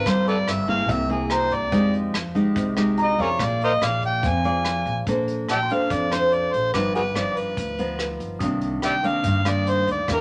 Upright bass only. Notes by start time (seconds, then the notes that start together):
0.06 G1
0.49 G1
0.89 C2
1.52 C2
1.72 F2
2.15 F2
2.57 C2
3.18 F2
3.40 A#1
3.81 A#1
4.24 F2
4.86 A#1
5.07 A#1
5.50 A#1
5.90 F2
6.54 A#1
6.74 G1
7.17 G1
7.57 D2
8.20 G1
8.40 C2
8.83 C2
9.24 G2
9.87 D2
10.08 E2